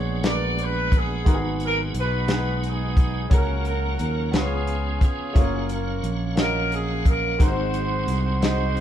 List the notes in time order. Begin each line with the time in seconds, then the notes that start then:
Already playing: A#1 F#3 G#3 B3 D4 F#4 G#4 C#5
0.22 G#3 B3 D4 F#4 A#4, snare, closed hi-hat
0.27 D5
0.32 B4
0.58 closed hi-hat
0.63 B4
0.92 kick, closed hi-hat
0.97 G#4
1.24 G#1 G#2 F#3 G#3 B3 D#4 F#4 G#4 A#4, kick, closed hi-hat
1.34 G#4
1.60 closed hi-hat
1.65 A#4
1.94 B1 D#4 F#4, closed hi-hat
1.99 B4
2.27 G#3 B3 D#4 F#4 G#4, snare, closed hi-hat
2.63 B3 D#4, closed hi-hat
2.67 G#4
2.97 kick, closed hi-hat
3.30 C#2 C#3 F#3 A#3 C#4 F#4 G#4 A#4, kick, closed hi-hat
3.34 A#4
3.65 C#4 F#4 A#4, closed hi-hat
3.99 D#2, closed hi-hat
4.31 C#2 C#3 D#3 B3 C#4 F4 G#4 B4, snare, closed hi-hat
4.35 G#4
4.41 F3 C#5
4.67 closed hi-hat
5.01 C#4 F4 G#4, kick, closed hi-hat
5.33 F#1 F#3 A3 C#4 F4 G#4 C#5 F5, kick, closed hi-hat
5.39 A#3 A#4
5.69 A#4, closed hi-hat
6.03 A#1, closed hi-hat
6.35 A#3 C#4 F4 F#4 D#5, snare, closed hi-hat
6.40 A#4
6.72 G#4, closed hi-hat
7.05 A#4, kick, closed hi-hat
7.38 G#1 G#2 F#3 G#3 C4 D#4 F#4 A#4 C5, kick, closed hi-hat
7.46 G#4 C5
7.74 closed hi-hat
8.07 C2, closed hi-hat
8.41 G#3 C4 D#4 F#4 C5 D#5, snare, closed hi-hat
8.77 closed hi-hat